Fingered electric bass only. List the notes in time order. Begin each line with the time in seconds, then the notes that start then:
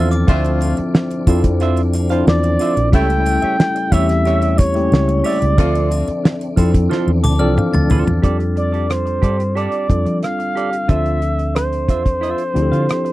Already playing: E2
0.29 D2
0.79 muted fingered electric bass stroke
1.27 F2
2.27 E2
2.77 A#1
2.93 C#2
3.43 muted fingered electric bass stroke
3.92 E2
4.92 C#2
5.42 C#2
5.58 D2
6.08 muted fingered electric bass stroke
6.57 F2
7.07 E2
7.24 D2
7.41 C2
7.74 D2
7.91 D2
8.07 E2
8.24 F2
9.23 G2
9.90 F2
10.06 F3
10.89 D2
11.88 E2
12.56 D2
12.72 D3